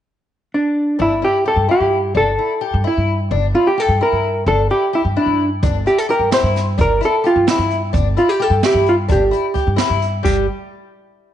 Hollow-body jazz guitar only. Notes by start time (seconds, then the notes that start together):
0.54 D4
1.02 E4
1.25 G4
1.48 A4
1.71 G4
2.17 A4
2.87 E4
3.55 F4
3.67 G4
3.80 A4
4.03 A#4
4.48 A4
4.71 G4
4.95 E4
5.17 D4
5.87 G4
5.98 A4
6.10 A#4
6.34 C5
6.81 A#4
7.05 A4
7.27 F4
7.50 E4
8.18 F4
8.29 G4
8.42 A4
8.66 G4
8.89 F4
9.12 G4
10.24 G4